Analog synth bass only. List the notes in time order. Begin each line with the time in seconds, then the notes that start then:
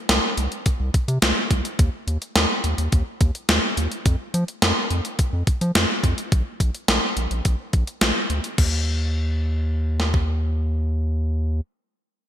0.09 C2
0.37 C2
0.80 C2
1.08 C3
1.22 C2
1.51 C2
1.79 D#2
2.07 D#2
2.36 D#2
2.64 D#2
2.78 D#2
2.93 D#2
3.21 D#2
3.49 D#2
3.77 D#2
4.06 F2
4.34 F3
4.62 F2
4.90 F2
5.33 F2
5.61 F3
5.75 F2
6.04 F2
6.32 A#1
6.60 A#1
6.89 A#1
7.17 A#1
7.31 A#1
7.45 A#1
7.73 A#1
8.02 A#1
8.30 D2
8.58 D#2